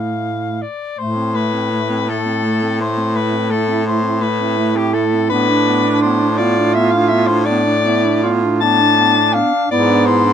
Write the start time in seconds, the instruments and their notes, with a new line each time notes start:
Already playing: baritone saxophone A2, clarinet A3, alto saxophone E4, soprano saxophone F5
0.62 soprano saxophone D5
0.98 baritone saxophone A2, clarinet A3, soprano saxophone C5
1.17 clarinet C4
1.35 clarinet A3, soprano saxophone B4
1.54 clarinet C4
1.71 clarinet A3
1.90 clarinet C4
2.09 clarinet A3, soprano saxophone A4
2.26 clarinet C4
2.45 clarinet A3
2.62 clarinet C4
2.80 clarinet A3, soprano saxophone C5
2.98 clarinet C4
3.15 clarinet A3, alto saxophone E4, soprano saxophone B4
3.33 clarinet C4
3.50 clarinet A3, soprano saxophone A4
3.68 clarinet C4
3.85 clarinet A3, soprano saxophone C5
4.03 clarinet C4
4.21 clarinet A3, alto saxophone E4, soprano saxophone B4
4.40 clarinet C4
4.58 clarinet A3
4.75 clarinet C4, soprano saxophone G4
4.93 clarinet A3, soprano saxophone A4
5.14 clarinet C4
5.30 baritone saxophone A2, clarinet B3, alto saxophone D4, soprano saxophone B4
5.50 clarinet D4
5.68 clarinet B3
5.87 clarinet D4
6.02 clarinet B3, soprano saxophone C5
6.22 clarinet D4
6.37 clarinet B3, alto saxophone F4, soprano saxophone D5
6.58 clarinet D4
6.74 clarinet B3, soprano saxophone E5
6.91 clarinet D4, soprano saxophone F5
7.08 clarinet B3, soprano saxophone E5
7.27 clarinet D4, soprano saxophone C5
7.45 clarinet B3, alto saxophone D4, soprano saxophone D5
7.66 clarinet D4
7.85 clarinet B3, alto saxophone E4
8.05 clarinet D4
8.23 clarinet B3, alto saxophone F4
8.44 clarinet D4
8.61 clarinet B3, alto saxophone D4, soprano saxophone A5
8.81 clarinet D4
8.98 clarinet B3
9.17 clarinet D4
9.33 clarinet B3, soprano saxophone F5
9.54 clarinet D4
9.70 baritone saxophone G#2, alto saxophone B3, clarinet E4, soprano saxophone D5
9.89 clarinet D4
10.06 clarinet E4, soprano saxophone C5
10.25 clarinet D4